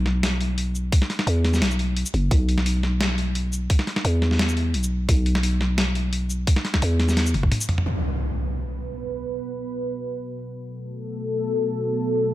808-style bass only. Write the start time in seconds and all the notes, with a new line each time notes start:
Already playing: B1
1.27 E2
1.62 B1
2.14 F#1
2.31 B1
4.05 E2
4.74 B1
5.09 B1
6.82 E2
7.34 F#1